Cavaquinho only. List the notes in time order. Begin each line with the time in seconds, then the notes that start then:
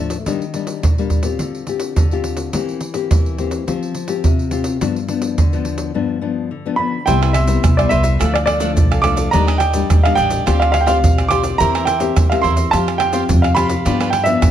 7.07 E4 B4 C5 E5
7.22 E4 B4 C5 E5
7.33 E4 B4 C5 E5
7.78 B4 C5 E5
7.90 E4 B4 C5 E5
8.03 B4 C5 E5
8.19 D4 A4 D5 F5
8.47 D4 A4 D5 F5
8.60 D4 A4 D5 F5
8.91 A4 D5 F5
9.03 D4 A4 D5 F5
9.16 A4 D5 F5
9.32 D4 G4 D5 D#5
9.47 D4 G4 D5 D#5
9.60 G4 D5 D#5
10.04 G4 D5 D#5
10.16 D4 G4 D5 D#5
10.29 G4 D5 D#5
10.46 F4 G4 C5 D5
10.73 F4 G4 C5 D5
10.86 F4 G4 C5 D5
11.18 G4 C5 D5
11.30 F4 G4 C5 D5
11.43 G4 C5 D5
11.60 E4 A#4 C5 E5
11.75 E4 A#4 C5 E5
11.86 E4 A#4 C5 E5
12.31 A#4 C5 E5
12.43 E4 A#4 C5 E5
12.56 A#4 C5 E5
12.73 F4 G4 C5 F5
13.00 F4 G4 C5 F5
13.13 F4 G4 C5 F5
13.43 G4 C5 F5
13.55 F4 G4 C5 F5
13.69 G4 C5 F5
13.85 F4 G4 B4 D5
14.00 F4 G4 B4 D5
14.12 F4 G4 B4 D5